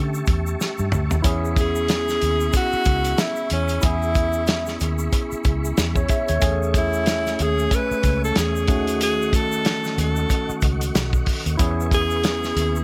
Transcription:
Already playing: D3 A3 C#4 G4 E5 A5 C#6
0.14 shaker
0.26 E2, kick, closed hi-hat, shaker
0.47 shaker
0.61 snare, shaker
0.78 G2, shaker
0.92 D2, mid tom, shaker
1.11 D#2, floor tom, shaker
1.22 E2 B3 C#4 E4 G#4 E5 B5 C#6, kick, closed hi-hat, shaker
1.45 shaker
1.56 kick, closed hi-hat, shaker
1.61 G#4
1.75 shaker
1.88 snare, closed hi-hat, shaker
2.09 snare, shaker
2.22 D#2, closed hi-hat, shaker
2.40 shaker
2.53 F#4, kick, closed hi-hat, shaker
2.72 muted fingered electric bass stroke, shaker
2.85 C#2, kick, closed hi-hat, shaker
3.04 closed hi-hat, shaker
3.18 E4, snare, closed hi-hat, shaker
3.36 shaker
3.50 E2 C#4, closed hi-hat, shaker
3.68 closed hi-hat, shaker
3.81 E2 B3 C#4 E4, kick, closed hi-hat, shaker
3.85 E4 G#4
4.03 shaker
4.15 kick, closed hi-hat, shaker
4.33 shaker
4.47 snare, closed hi-hat, shaker
4.66 snare, shaker
4.80 D#2, closed hi-hat, shaker
4.99 shaker
5.13 kick, closed hi-hat, shaker
5.32 muted fingered electric bass stroke, shaker
5.44 C#2, kick, closed hi-hat, shaker
5.65 shaker
5.77 E2, snare, closed hi-hat, shaker
5.96 C#5, kick, shaker
6.08 E5, kick, closed hi-hat, shaker
6.28 D#2 C#5, closed hi-hat, shaker
6.40 E2 A3 C#4 G#4 G#5, kick, closed hi-hat, shaker
6.63 shaker
6.74 kick, closed hi-hat, shaker
6.78 E4
6.93 shaker
7.06 snare, closed hi-hat, shaker
7.26 snare, shaker
7.39 D#2 G#4, closed hi-hat, shaker
7.59 shaker
7.71 B4, kick, closed hi-hat, shaker
7.91 muted fingered electric bass stroke, shaker
8.03 C#2, kick, closed hi-hat, shaker
8.24 A4, shaker
8.36 E2 G#4, snare, closed hi-hat, shaker
8.56 shaker
8.67 D#2 D#3 A3 C#4 D#5 F#5, kick, closed hi-hat, shaker
8.71 F#4
8.87 closed hi-hat, shaker
9.01 G#4, closed hi-hat, shaker
9.22 shaker
9.33 A4, kick, closed hi-hat, shaker
9.52 shaker
9.65 snare, closed hi-hat, shaker
9.84 snare, shaker
9.98 D#2 A4, closed hi-hat, shaker
10.16 shaker
10.30 kick, closed hi-hat, shaker
10.49 muted fingered electric bass stroke, shaker
10.61 C#2, kick, closed hi-hat, shaker
10.81 closed hi-hat, shaker
10.95 B1, snare, closed hi-hat, shaker
11.13 kick, shaker
11.26 kick, open hi-hat, shaker
11.46 D#2, closed hi-hat, shaker
11.57 E2 B3 C#4 E4 B4 E5 G#5, kick, closed hi-hat, shaker
11.61 G#4
11.81 shaker
11.91 G#4, kick, closed hi-hat, shaker
12.11 shaker
12.24 snare, closed hi-hat, shaker
12.43 snare, shaker
12.56 D#2, closed hi-hat, shaker
12.76 shaker

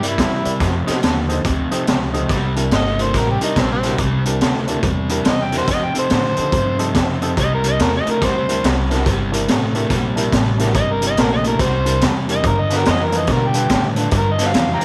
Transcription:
Already playing: G2
0.02 C3 G3 E4 G4 A#4 D5, closed hi-hat
0.08 E4
0.17 E2 C3 G3, kick, snare, closed hi-hat
0.44 C3 G3 E4 G4 A#4 D5, muted upright bass stroke, closed hi-hat
0.60 F2 C3, kick, snare, closed hi-hat
0.86 F2 C3 D#4 G4 A4 C5, muted upright bass stroke, snare, closed hi-hat
1.02 D#2 F2 D3, snare, closed hi-hat
1.29 F2 D3 D#4 G4 A4 C5, closed hi-hat
1.44 D2 F2 C3, kick, closed hi-hat
1.71 F2 C3 D#4 G4 A4 C5 D#5, muted upright bass stroke, closed hi-hat
1.87 C#2 F2 C3 G5, snare, closed hi-hat
2.14 F2 C3 D#4 G4 A4 C5, closed hi-hat
2.29 C2 C3 G3, kick, snare, closed hi-hat
2.56 C3 G3 D4 E4 G4 A#4, closed hi-hat
2.71 G1 C3 A3, snare, closed hi-hat
2.76 D#5
2.99 C3 A3 D4 E4 G4 A#4 C5, closed hi-hat
3.14 A1 C3 G3 A#4, kick, snare, closed hi-hat
3.31 G4
3.41 C3 G3 D4 D#4 E4 G4 A#4, closed hi-hat
3.56 A#1 C3 G3 C4, kick, snare, closed hi-hat
3.73 C4
3.83 C3 G3 D4 E4 G4 A#4, snare, closed hi-hat
3.98 C2 C3 G3, kick, closed hi-hat
4.25 C3 G3 D4 E4 G4 A#4, closed hi-hat
4.41 D2 C3 A3, snare, closed hi-hat
4.68 C3 A3 D4 E4 G4 A#4, closed hi-hat
4.83 E2 C3 G3, kick, closed hi-hat
5.09 C3 G3 D4 E4 G4 A#4, closed hi-hat
5.25 E2 C3 G3, snare, closed hi-hat
5.29 D#5
5.44 G5
5.52 C3 G3 D4 E4 G4 A#4, snare, closed hi-hat
5.58 C5
5.68 F2 C3 D#5, kick, snare, closed hi-hat
5.84 G5
5.94 F2 C3 C4 D#4 G4 A4, muted upright bass stroke, closed hi-hat
5.99 C5
6.10 F2 A2 D3 C5, snare, closed hi-hat
6.37 F2 D3 C4 D#4 G4 A4, muted upright bass stroke, closed hi-hat
6.52 F2 G2 C3, kick, closed hi-hat
6.78 F2 C3 C4 D#4 G4 A4, closed hi-hat
6.95 F2 C3, kick, snare, closed hi-hat
7.22 F2 C3 C4 D#4 G4 A4, closed hi-hat
7.37 C2 C3 G3, kick, closed hi-hat
7.41 D#5
7.54 A#4
7.64 C3 G3 D4 E4 G4 A#4, closed hi-hat
7.68 D#5
7.79 E2 C3 A3 A#4, snare, closed hi-hat
7.97 D#5
8.06 C3 A3 D4 E4 G4 A#4, muted upright bass stroke, closed hi-hat
8.10 A#4
8.22 D2 C3 G3 C5, kick, snare, closed hi-hat
8.48 C3 G3 D4 E4 G4 A#4, closed hi-hat
8.63 C2 C3 G3, snare, closed hi-hat
8.90 C3 G3 D4 E4 G4 A#4, snare, closed hi-hat
9.06 G1 C3 G3, kick, snare, closed hi-hat
9.32 C3 G3 D4 E4 G4 A#4, closed hi-hat
9.47 A1 C3 A3, snare, closed hi-hat
9.74 C3 A3 D4 E4 G4 A#4, closed hi-hat
9.90 A#1 C3 G3, kick, snare, closed hi-hat
10.16 C3 G3 D4 E4 G4 A#4, closed hi-hat
10.33 A1 C3 G3, kick, snare, closed hi-hat
10.58 C3 G3 D4 E4 G4 A#4, snare, closed hi-hat
10.74 G1 C3 G3 D#5, kick, closed hi-hat
10.92 A#4
11.01 C3 G3 D4 E4 G4 A#4, closed hi-hat
11.07 D#5
11.17 A#1 C3 A3 A#4, snare, closed hi-hat
11.33 D#5
11.44 C3 A3 D4 E4 G4 A#4, closed hi-hat
11.59 C2 C3 G3 C5, kick, snare, closed hi-hat
11.85 C3 G3 D4 E4 G4 A#4, closed hi-hat
12.01 E2 C3 G3, snare, closed hi-hat
12.28 C3 G3 D4 E4 G4 A#4, closed hi-hat
12.32 D#5
12.44 G2 D3 A#4, kick, closed hi-hat
12.61 D#5
12.70 G2 D3 D4 F4 A4 B4, snare, closed hi-hat
12.77 A#4
12.85 F2 G2 E3, snare, closed hi-hat
12.90 D#5
13.05 A#4
13.12 G2 E3 D4 F4 A4 B4, closed hi-hat
13.18 D#5
13.27 G2 B2 D3, kick, snare, closed hi-hat
13.32 A#4
13.47 G4
13.54 G2 D3 D4 F4 A4 B4, closed hi-hat
13.69 G2 A2 D3, kick, snare, closed hi-hat
13.96 G2 D3 D4 F4 A4 B4, closed hi-hat
14.11 G2 D3, kick, closed hi-hat
14.18 A#4
14.32 D#5
14.38 G2 D3 D4 F4 A4 B4, snare, closed hi-hat
14.46 F5
14.54 F2 G2 E3, snare, closed hi-hat
14.74 F5 G5 A#5
14.81 G2 E3 D4 F4, muted upright bass stroke, closed hi-hat

